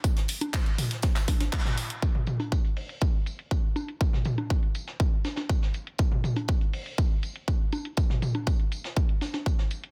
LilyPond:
\new DrumStaff \with { instrumentName = "Drums" } \drummode { \time 4/4 \tempo 4 = 121 <hh bd tamb>16 <hh sn>16 <hho tamb>16 <cgho hh>16 <hc hh bd sn tamb>16 hh16 <hho tamb toml>16 <hh sn>16 <hh bd sn tamb>16 <hc hh sn tamb>16 <cgho hho bd sn tamb>16 <cgho hh sn>16 <hc hh bd sn tamb>16 <sn toml>16 <hho tamb>16 hh16 | <hh bd tamb>16 toml16 <hh tamb toml>16 <cgho hh>16 <hh bd tamb>16 hh16 <hh hho>16 hh16 <hh bd tamb>8 <hh tamb>16 hh16 <hh bd tamb>8 <cgho hh tamb>16 hh16 | <hh bd tamb>16 <sn toml>16 <hh tamb toml>16 <cgho hh>16 <hh bd tamb>16 hh16 <hh tamb>16 <hh sn>16 <hh bd tamb>8 <cgho hh sn tamb>16 <cgho hh sn>16 <hh bd tamb>16 sn16 <hh tamb>16 hh16 | <hh bd tamb>16 toml16 <hh tamb toml>16 <cgho hh>16 <hh bd tamb>16 hh16 <hh hho>16 hh16 <hh bd tamb>8 <hh tamb>16 hh16 <hh bd tamb>8 <cgho hh tamb>16 hh16 |
<hh bd tamb>16 <sn toml>16 <hh tamb toml>16 <cgho hh>16 <hh bd tamb>16 hh16 <hh tamb>16 <hh sn>16 <hh bd tamb>16 hh16 <cgho hh sn tamb>16 <cgho hh sn>16 <hh bd tamb>16 sn16 <hh tamb>16 hh16 | }